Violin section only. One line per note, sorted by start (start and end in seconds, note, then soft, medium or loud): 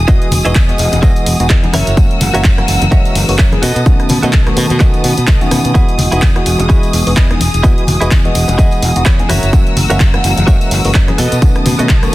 0.00 1.70 G#4 medium
0.00 1.70 D#6 medium
1.73 3.61 A#4 medium
1.73 3.61 F#5 medium
1.73 3.61 E6 medium
3.62 5.73 B4 medium
3.62 5.73 A5 medium
3.62 9.26 D#6 medium
5.75 9.26 G#4 medium
9.30 11.17 A#4 medium
9.30 11.17 F#5 medium
9.30 11.17 E6 medium
11.19 12.15 B4 medium
11.19 12.15 A5 medium
11.19 12.15 D#6 medium